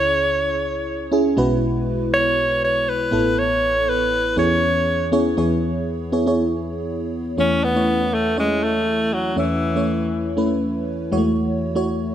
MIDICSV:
0, 0, Header, 1, 3, 480
1, 0, Start_track
1, 0, Tempo, 500000
1, 1317, Time_signature, 4, 2, 24, 8
1, 11662, End_track
2, 0, Start_track
2, 0, Title_t, "Alto saxophone"
2, 0, Program_c, 0, 65
2, 0, Note_on_c, 0, 73, 106
2, 1085, Note_off_c, 0, 73, 0
2, 2052, Note_on_c, 0, 73, 115
2, 2491, Note_off_c, 0, 73, 0
2, 2537, Note_on_c, 0, 73, 104
2, 2775, Note_on_c, 0, 71, 100
2, 2789, Note_off_c, 0, 73, 0
2, 3252, Note_on_c, 0, 73, 110
2, 3266, Note_off_c, 0, 71, 0
2, 3736, Note_on_c, 0, 71, 96
2, 3750, Note_off_c, 0, 73, 0
2, 4206, Note_off_c, 0, 71, 0
2, 4212, Note_on_c, 0, 73, 101
2, 4886, Note_off_c, 0, 73, 0
2, 7103, Note_on_c, 0, 61, 106
2, 7333, Note_on_c, 0, 59, 105
2, 7348, Note_off_c, 0, 61, 0
2, 7816, Note_on_c, 0, 57, 91
2, 7831, Note_off_c, 0, 59, 0
2, 8047, Note_off_c, 0, 57, 0
2, 8059, Note_on_c, 0, 56, 90
2, 8292, Note_on_c, 0, 57, 93
2, 8306, Note_off_c, 0, 56, 0
2, 8768, Note_on_c, 0, 54, 86
2, 8783, Note_off_c, 0, 57, 0
2, 9003, Note_off_c, 0, 54, 0
2, 9015, Note_on_c, 0, 52, 79
2, 9927, Note_off_c, 0, 52, 0
2, 11662, End_track
3, 0, Start_track
3, 0, Title_t, "FM electric piano"
3, 0, Program_c, 1, 5
3, 0, Control_c, 1, 64, 127
3, 0, Note_on_c, 1, 37, 63
3, 0, Note_on_c, 1, 49, 64
3, 0, Note_on_c, 1, 61, 75
3, 0, Note_on_c, 1, 64, 67
3, 0, Note_on_c, 1, 68, 77
3, 1071, Note_off_c, 1, 61, 0
3, 1071, Note_on_c, 1, 61, 90
3, 1075, Note_off_c, 1, 64, 0
3, 1075, Note_on_c, 1, 64, 82
3, 1081, Note_off_c, 1, 68, 0
3, 1081, Note_on_c, 1, 68, 100
3, 1241, Note_off_c, 1, 61, 0
3, 1243, Note_off_c, 1, 64, 0
3, 1246, Note_off_c, 1, 68, 0
3, 1281, Note_off_c, 1, 37, 0
3, 1281, Note_off_c, 1, 49, 0
3, 1313, Note_on_c, 1, 56, 88
3, 1315, Note_on_c, 1, 59, 83
3, 1317, Note_on_c, 1, 64, 86
3, 1320, Note_on_c, 1, 35, 82
3, 1320, Note_on_c, 1, 47, 78
3, 1322, Note_on_c, 1, 66, 78
3, 1325, Note_on_c, 1, 71, 99
3, 1330, Control_c, 1, 64, 0
3, 1502, Control_c, 1, 64, 127
3, 1959, Note_off_c, 1, 56, 0
3, 1960, Note_off_c, 1, 59, 0
3, 1961, Note_off_c, 1, 64, 0
3, 1964, Note_off_c, 1, 66, 0
3, 1965, Note_off_c, 1, 71, 0
3, 2960, Note_off_c, 1, 35, 0
3, 2960, Note_off_c, 1, 47, 0
3, 2990, Note_on_c, 1, 59, 84
3, 2995, Note_on_c, 1, 45, 63
3, 2995, Note_on_c, 1, 64, 76
3, 2997, Note_on_c, 1, 33, 67
3, 3003, Note_on_c, 1, 69, 88
3, 3008, Control_c, 1, 64, 0
3, 3195, Control_c, 1, 64, 127
3, 3766, Note_off_c, 1, 59, 0
3, 3769, Note_off_c, 1, 64, 0
3, 3773, Note_off_c, 1, 69, 0
3, 4158, Note_off_c, 1, 45, 0
3, 4159, Note_off_c, 1, 33, 0
3, 4189, Note_on_c, 1, 59, 78
3, 4192, Note_on_c, 1, 61, 67
3, 4194, Note_on_c, 1, 64, 66
3, 4196, Note_on_c, 1, 40, 63
3, 4196, Note_on_c, 1, 52, 60
3, 4199, Note_on_c, 1, 68, 70
3, 4200, Note_on_c, 1, 73, 83
3, 4208, Control_c, 1, 64, 0
3, 4352, Control_c, 1, 64, 127
3, 4779, Note_off_c, 1, 59, 0
3, 4780, Note_off_c, 1, 61, 0
3, 4781, Note_off_c, 1, 64, 0
3, 4783, Note_off_c, 1, 68, 0
3, 4784, Note_off_c, 1, 73, 0
3, 4914, Note_on_c, 1, 59, 89
3, 4919, Note_on_c, 1, 61, 83
3, 4921, Note_on_c, 1, 64, 78
3, 4922, Note_on_c, 1, 68, 85
3, 4925, Note_on_c, 1, 73, 101
3, 5083, Note_off_c, 1, 59, 0
3, 5085, Note_off_c, 1, 61, 0
3, 5086, Note_off_c, 1, 64, 0
3, 5086, Note_off_c, 1, 68, 0
3, 5088, Note_off_c, 1, 73, 0
3, 5118, Note_off_c, 1, 40, 0
3, 5118, Note_off_c, 1, 52, 0
3, 5155, Note_on_c, 1, 59, 83
3, 5158, Note_on_c, 1, 64, 74
3, 5162, Note_on_c, 1, 40, 76
3, 5162, Note_on_c, 1, 52, 75
3, 5163, Note_on_c, 1, 68, 74
3, 5166, Note_on_c, 1, 73, 90
3, 5170, Control_c, 1, 64, 0
3, 5345, Control_c, 1, 64, 127
3, 5633, Note_off_c, 1, 59, 0
3, 5635, Note_off_c, 1, 64, 0
3, 5637, Note_off_c, 1, 68, 0
3, 5639, Note_off_c, 1, 73, 0
3, 5878, Note_on_c, 1, 59, 82
3, 5880, Note_on_c, 1, 64, 77
3, 5883, Note_on_c, 1, 68, 78
3, 5887, Note_on_c, 1, 73, 88
3, 5965, Note_off_c, 1, 59, 0
3, 5966, Note_off_c, 1, 64, 0
3, 5968, Note_off_c, 1, 68, 0
3, 5969, Note_off_c, 1, 73, 0
3, 6012, Note_on_c, 1, 59, 82
3, 6017, Note_on_c, 1, 64, 79
3, 6020, Note_on_c, 1, 68, 76
3, 6025, Note_on_c, 1, 73, 93
3, 6637, Note_off_c, 1, 59, 0
3, 6640, Note_off_c, 1, 64, 0
3, 6642, Note_off_c, 1, 68, 0
3, 6644, Note_off_c, 1, 73, 0
3, 7041, Note_off_c, 1, 40, 0
3, 7041, Note_off_c, 1, 52, 0
3, 7078, Note_on_c, 1, 57, 68
3, 7082, Note_on_c, 1, 61, 63
3, 7083, Note_on_c, 1, 52, 62
3, 7084, Note_on_c, 1, 40, 61
3, 7086, Note_on_c, 1, 64, 62
3, 7088, Note_on_c, 1, 73, 76
3, 7089, Control_c, 1, 64, 0
3, 7236, Control_c, 1, 64, 127
3, 7316, Note_off_c, 1, 57, 0
3, 7318, Note_off_c, 1, 61, 0
3, 7320, Note_off_c, 1, 64, 0
3, 7321, Note_off_c, 1, 73, 0
3, 7444, Note_on_c, 1, 57, 68
3, 7447, Note_on_c, 1, 61, 69
3, 7452, Note_on_c, 1, 64, 66
3, 7454, Note_on_c, 1, 73, 80
3, 7836, Note_off_c, 1, 57, 0
3, 7837, Note_off_c, 1, 61, 0
3, 7839, Note_off_c, 1, 64, 0
3, 7841, Note_off_c, 1, 73, 0
3, 8031, Note_on_c, 1, 57, 70
3, 8034, Note_on_c, 1, 61, 59
3, 8040, Note_on_c, 1, 64, 66
3, 8042, Note_on_c, 1, 73, 78
3, 8678, Note_off_c, 1, 57, 0
3, 8679, Note_off_c, 1, 61, 0
3, 8682, Note_off_c, 1, 64, 0
3, 8684, Note_off_c, 1, 73, 0
3, 8962, Note_off_c, 1, 40, 0
3, 8962, Note_off_c, 1, 52, 0
3, 8986, Note_on_c, 1, 57, 71
3, 8991, Note_on_c, 1, 61, 62
3, 8993, Note_on_c, 1, 40, 62
3, 8994, Note_on_c, 1, 52, 62
3, 8996, Note_on_c, 1, 64, 60
3, 9001, Note_on_c, 1, 73, 76
3, 9230, Note_off_c, 1, 57, 0
3, 9233, Note_off_c, 1, 61, 0
3, 9235, Note_off_c, 1, 64, 0
3, 9238, Note_off_c, 1, 73, 0
3, 9365, Note_on_c, 1, 57, 75
3, 9369, Note_on_c, 1, 61, 65
3, 9373, Note_on_c, 1, 64, 63
3, 9377, Note_on_c, 1, 73, 80
3, 9756, Note_off_c, 1, 57, 0
3, 9758, Note_off_c, 1, 61, 0
3, 9760, Note_off_c, 1, 64, 0
3, 9762, Note_off_c, 1, 73, 0
3, 9953, Note_on_c, 1, 57, 80
3, 9956, Note_on_c, 1, 61, 73
3, 9961, Note_on_c, 1, 64, 72
3, 9964, Note_on_c, 1, 71, 84
3, 10599, Note_off_c, 1, 57, 0
3, 10601, Note_off_c, 1, 61, 0
3, 10603, Note_off_c, 1, 64, 0
3, 10605, Note_off_c, 1, 71, 0
3, 10637, Note_off_c, 1, 40, 0
3, 10637, Note_off_c, 1, 52, 0
3, 10671, Note_on_c, 1, 56, 72
3, 10675, Note_on_c, 1, 52, 70
3, 10677, Note_on_c, 1, 64, 78
3, 10679, Note_on_c, 1, 40, 75
3, 10679, Note_on_c, 1, 66, 80
3, 10682, Note_on_c, 1, 73, 100
3, 10687, Control_c, 1, 64, 0
3, 10728, Note_on_c, 1, 57, 90
3, 10738, Note_off_c, 1, 56, 0
3, 10847, Control_c, 1, 64, 127
3, 11157, Note_off_c, 1, 64, 0
3, 11158, Note_off_c, 1, 66, 0
3, 11160, Note_off_c, 1, 73, 0
3, 11183, Note_off_c, 1, 57, 0
3, 11283, Note_on_c, 1, 57, 85
3, 11288, Note_on_c, 1, 64, 81
3, 11288, Note_on_c, 1, 66, 81
3, 11294, Note_on_c, 1, 73, 100
3, 11662, Note_off_c, 1, 40, 0
3, 11662, Note_off_c, 1, 52, 0
3, 11662, Note_off_c, 1, 57, 0
3, 11662, Note_off_c, 1, 64, 0
3, 11662, Note_off_c, 1, 66, 0
3, 11662, Note_off_c, 1, 73, 0
3, 11662, End_track
0, 0, End_of_file